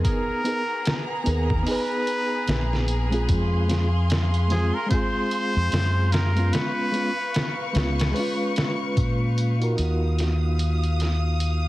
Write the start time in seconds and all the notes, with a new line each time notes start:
Already playing: B3 D#4 G#4 A#4
0.04 B3 G#4 A#4 A#5, kick, closed hi-hat
0.44 B3 D#4 G#4 A#4, closed hi-hat
0.85 snare, closed hi-hat
1.24 D#2 B3 D#4 G#4, closed hi-hat
1.28 A#4
1.50 kick
1.63 B3 D#4, open hi-hat
1.67 G#4 B4
2.07 closed hi-hat
2.48 A#1, snare, closed hi-hat
2.73 snare
2.88 closed hi-hat
3.10 G#3 C4 F4, closed hi-hat
3.14 G#4
3.28 F2 F5 C6, kick, closed hi-hat
3.67 G#3 C4 F4, closed hi-hat
3.71 G#4, snare
4.10 snare, closed hi-hat
4.34 closed hi-hat
4.48 G#3 C4 F4 G#4, snare, closed hi-hat
4.52 G#4
4.74 A#4
4.86 G#3 C4
4.91 F4 G#4 C5, kick, closed hi-hat
5.31 closed hi-hat
5.56 F2
5.72 F#2, snare, closed hi-hat
6.12 A#4, snare, closed hi-hat
6.35 G#3 B3 C#4, closed hi-hat
6.39 F4
6.53 B4 C#6, snare, closed hi-hat
6.92 G#3 B3 C#4, closed hi-hat
6.96 F4
7.34 snare, closed hi-hat
7.73 C#2 G#3 B3 C#4, snare, closed hi-hat
7.77 F4
7.99 snare, closed hi-hat
8.11 G#3 B4
8.16 C#4 F4, open hi-hat
8.56 snare, closed hi-hat
8.97 A#2, kick, closed hi-hat
9.38 closed hi-hat
9.60 D#4 F4 F#4 A#4, closed hi-hat
9.74 A#3 D#4 F5
9.78 D#2 F4 D#6, closed hi-hat
9.82 F#4
10.19 snare, closed hi-hat
10.59 closed hi-hat
10.84 closed hi-hat
11.00 snare, closed hi-hat
11.40 closed hi-hat